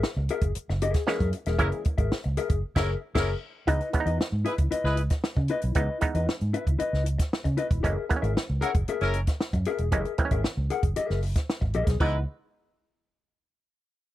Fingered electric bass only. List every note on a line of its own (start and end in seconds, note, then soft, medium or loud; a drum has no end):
0.17 0.28 C#2 loud
0.42 0.54 F#1 medium
0.56 muted fingered electric bass stroke medium
0.70 0.92 F#1 medium
1.20 1.32 F#2 medium
1.47 1.59 E1 loud
1.59 1.71 F#1 loud
1.98 2.10 G#1 medium
2.12 muted fingered electric bass stroke soft
2.26 2.37 C#2 loud
2.50 2.62 F#1 medium
2.76 2.94 F#1 loud
3.15 3.33 F#1 loud
3.68 3.79 C#2 loud
4.06 4.18 E2 medium
4.20 muted fingered electric bass stroke soft
4.32 4.44 G#2 medium
4.58 4.70 C#2 medium
4.72 muted fingered electric bass stroke soft
4.84 5.07 C#2 medium
5.37 5.48 C#3 medium
5.64 5.75 B1 loud
5.76 5.87 C#2 loud
6.15 6.26 E2 medium
6.29 muted fingered electric bass stroke soft
6.42 6.53 G#2 medium
6.67 6.78 C#2 medium
6.81 muted fingered electric bass stroke soft
6.93 7.16 C#2 medium
7.45 7.57 C#3 loud
7.71 7.82 E1 medium
7.84 7.96 F#1 loud
8.23 8.34 G#1 medium
8.50 8.61 C#2 medium
8.75 8.87 F#1 medium
8.88 muted fingered electric bass stroke medium
9.01 9.24 F#1 medium
9.53 9.65 F#2 medium
9.79 9.92 E1 medium
9.92 10.04 F#1 loud
10.31 10.43 G#1 medium
10.45 muted fingered electric bass stroke soft
10.57 10.69 C#2 loud
10.83 10.95 F#1 medium
11.10 11.33 F#1 medium
11.62 11.73 G#1 medium
11.75 11.86 A#1 medium
11.87 11.98 B1 loud
12.00 12.24 C#2 medium